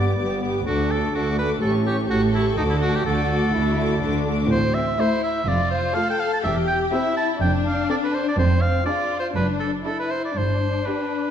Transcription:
0.00 0.13 G1 soft
0.00 0.13 G2 soft
0.00 0.17 B3 soft
0.00 0.18 B3 soft
0.00 0.18 G4 soft
0.00 0.39 D5 medium
0.00 0.16 D6 soft
0.17 0.61 G1 soft
0.17 0.61 G2 soft
0.17 0.66 B3 soft
0.17 0.42 B3 soft
0.17 0.43 G4 soft
0.17 0.42 D6 soft
0.43 0.67 B3 soft
0.43 0.67 G4 soft
0.43 0.65 D6 soft
0.66 1.09 D2 medium
0.66 0.90 A3 soft
0.66 1.14 D4 soft
0.66 0.93 F#4 medium
0.66 0.90 A4 soft
0.66 0.88 D6 soft
0.89 1.14 A3 soft
0.89 1.14 A4 soft
0.89 1.15 A4 medium
0.89 1.12 D6 soft
1.13 1.57 D2 soft
1.13 1.57 D2 medium
1.13 1.37 A3 soft
1.13 1.62 D4 soft
1.13 1.38 F#4 medium
1.13 1.38 A4 soft
1.13 1.38 D6 soft
1.38 1.61 A3 soft
1.38 1.62 A4 soft
1.38 1.50 B4 medium
1.38 1.62 D6 soft
1.62 2.05 A1 soft
1.62 2.05 A2 soft
1.62 1.85 A3 soft
1.62 2.10 C#4 medium
1.62 1.86 G4 soft
1.62 1.73 A4 soft
1.62 1.84 C#6 soft
1.86 2.09 A3 soft
1.86 1.98 G4 medium
1.86 2.10 G4 soft
1.86 2.08 C#6 soft
2.10 2.53 A1 soft
2.10 2.53 A2 soft
2.10 2.33 A3 soft
2.10 2.21 F#4 medium
2.10 2.34 G4 soft
2.10 3.04 A4 medium
2.10 2.32 C#6 soft
2.33 2.57 A3 soft
2.33 2.46 E4 medium
2.33 2.58 G4 soft
2.33 2.58 C#6 soft
2.57 3.01 D2 medium
2.57 3.01 D3 medium
2.57 2.82 A3 soft
2.57 2.63 D#4 medium
2.57 2.82 F#4 soft
2.57 2.82 D6 soft
2.70 2.76 E4 soft
2.81 3.06 A3 soft
2.81 2.97 F#4 medium
2.81 3.06 F#4 soft
2.81 3.06 D6 soft
2.95 3.05 G4 medium
3.06 3.49 D2 medium
3.06 3.49 D3 medium
3.06 3.30 A3 soft
3.06 3.30 F#4 soft
3.06 3.54 F#4 medium
3.06 4.24 A4 medium
3.06 3.30 D6 soft
3.31 3.54 A3 soft
3.31 3.54 F#4 soft
3.31 3.54 D6 soft
3.54 3.97 D2 medium
3.54 3.97 D3 medium
3.54 3.77 A3 medium
3.54 4.02 E4 medium
3.54 3.77 F#4 soft
3.54 3.76 D6 soft
3.78 4.02 A3 soft
3.78 4.01 F#4 soft
3.78 4.02 D6 soft
4.02 4.45 D2 soft
4.02 4.45 D3 medium
4.02 4.26 A3 soft
4.02 4.49 D4 medium
4.02 4.26 F#4 soft
4.02 4.25 D6 soft
4.27 4.50 A3 soft
4.27 4.50 F#4 soft
4.27 4.50 D6 soft
4.49 4.89 A1 medium
4.49 4.88 A2 medium
4.49 4.98 C4 medium
4.49 4.76 C5 medium
4.74 5.02 E5 medium
4.98 5.35 A3 medium
4.98 5.46 E4 medium
4.98 5.35 E4 medium
4.98 5.23 C5 medium
4.98 5.36 C6 medium
5.24 5.50 E5 medium
5.46 5.85 F1 medium
5.46 5.85 F2 medium
5.46 5.94 F4 medium
5.46 5.70 D5 medium
5.71 5.96 C5 medium
5.94 6.32 A3 soft
5.94 6.32 F4 soft
5.94 6.43 A4 medium
5.94 6.07 F5 medium
5.94 6.33 C6 soft
6.10 6.22 G5 medium
6.20 6.32 F5 medium
6.34 6.39 A5 medium
6.44 6.82 E1 medium
6.44 6.82 E2 medium
6.44 6.92 G4 medium
6.44 6.55 E5 medium
6.68 6.79 G5 medium
6.92 7.29 C4 medium
6.92 7.41 E4 medium
6.92 7.29 G4 medium
6.92 7.16 E5 medium
6.92 7.29 C6 medium
7.17 7.28 A5 medium
7.40 7.80 F1 medium
7.40 7.79 F2 medium
7.40 8.35 D4 medium
7.40 7.52 G5 medium
7.67 7.90 F5 medium
7.89 8.25 C4 medium
7.89 8.26 A4 medium
7.89 7.96 D5 medium
7.89 8.25 D6 medium
8.04 8.16 B4 medium
8.15 8.26 C5 medium
8.29 8.39 D5 medium
8.38 8.76 F1 medium
8.38 8.76 F2 medium
8.38 8.86 C4 medium
8.38 8.63 C5 medium
8.62 8.85 F5 medium
8.85 9.23 D4 medium
8.85 9.34 F4 medium
8.85 9.23 G#4 soft
8.85 9.18 D5 medium
8.85 9.22 D6 medium
9.20 9.27 C5 medium
9.33 9.75 F#1 medium
9.33 9.75 F#2 medium
9.33 9.83 D4 medium
9.33 9.47 B4 medium
9.60 9.71 A4 medium
9.84 10.23 D4 soft
9.84 10.34 E4 soft
9.84 10.23 A4 soft
9.84 9.98 A4 medium
9.84 10.22 D6 soft
10.00 10.12 B4 medium
10.11 10.23 C5 medium
10.25 10.39 D5 medium
10.33 10.75 G1 medium
10.33 10.75 G2 medium
10.33 11.31 D4 medium
10.38 10.88 C5 medium
10.86 11.24 D4 soft
10.86 11.24 G4 soft
10.86 11.31 B4 soft
10.86 11.24 D6 soft

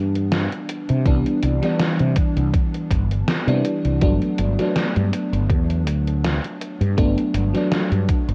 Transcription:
0.00 0.47 G2 medium
0.00 1.05 E3 medium
0.00 1.06 G3 medium
0.00 1.06 B3 medium
0.00 1.07 D4 medium
0.15 closed hi-hat soft
0.32 snare loud
0.32 closed hi-hat medium
0.52 closed hi-hat soft
0.69 closed hi-hat loud
0.89 1.03 C3 medium
0.89 closed hi-hat soft
1.05 1.22 C2 medium
1.05 1.58 E3 medium
1.05 1.58 G3 medium
1.05 1.58 B3 medium
1.05 1.59 D4 medium
1.05 kick loud
1.05 closed hi-hat medium
1.26 closed hi-hat soft
1.42 1.60 C2 medium
1.42 closed hi-hat medium
1.62 3.43 E3 medium
1.62 3.44 G3 medium
1.62 3.44 B3 medium
1.62 3.45 D4 medium
1.62 snare soft
1.62 closed hi-hat soft
1.80 snare loud
1.80 closed hi-hat medium
2.00 2.14 C3 medium
2.00 closed hi-hat soft
2.16 kick loud
2.16 closed hi-hat medium
2.37 2.51 C2 medium
2.37 closed hi-hat soft
2.54 kick loud
2.54 closed hi-hat medium
2.74 closed hi-hat soft
2.91 3.22 G1 medium
2.91 kick medium
2.91 closed hi-hat medium
3.11 closed hi-hat soft
3.28 snare loud
3.28 closed hi-hat medium
3.47 3.62 C3 medium
3.47 3.97 E3 medium
3.47 3.98 G3 medium
3.47 3.98 B3 medium
3.47 3.98 D4 medium
3.47 closed hi-hat soft
3.65 closed hi-hat medium
3.85 3.99 C2 medium
3.85 closed hi-hat soft
4.01 4.19 G1 loud
4.01 4.54 F#3 medium
4.01 4.54 A3 medium
4.01 4.54 B3 medium
4.01 4.54 D4 medium
4.01 kick loud
4.01 closed hi-hat medium
4.22 closed hi-hat soft
4.38 4.56 G1 medium
4.38 closed hi-hat medium
4.58 6.94 F#3 medium
4.58 6.94 A3 medium
4.58 6.95 B3 medium
4.58 6.95 D4 medium
4.58 snare soft
4.58 closed hi-hat soft
4.76 snare loud
4.76 closed hi-hat medium
4.96 5.10 G2 medium
4.96 closed hi-hat soft
5.13 closed hi-hat medium
5.33 5.51 G1 medium
5.33 closed hi-hat soft
5.49 5.86 E2 loud
5.49 kick loud
5.49 closed hi-hat medium
5.70 closed hi-hat soft
5.86 6.39 D2 medium
5.86 closed hi-hat medium
6.08 closed hi-hat soft
6.25 snare loud
6.25 closed hi-hat medium
6.44 closed hi-hat soft
6.61 closed hi-hat medium
6.81 6.95 G2 medium
6.81 closed hi-hat soft
6.97 7.15 G1 loud
6.97 7.50 F#3 medium
6.97 7.50 A3 medium
6.97 7.50 B3 medium
6.97 7.51 D4 medium
6.97 kick loud
6.97 closed hi-hat medium
7.18 closed hi-hat soft
7.34 7.52 G1 medium
7.34 closed hi-hat medium
7.54 8.35 F#3 medium
7.54 8.35 A3 medium
7.54 8.35 B3 medium
7.54 8.35 D4 medium
7.54 snare soft
7.54 closed hi-hat soft
7.72 snare loud
7.72 closed hi-hat medium
7.92 8.06 G2 medium
7.92 closed hi-hat soft
8.09 kick loud
8.09 closed hi-hat medium
8.28 8.35 G1 medium
8.28 closed hi-hat soft

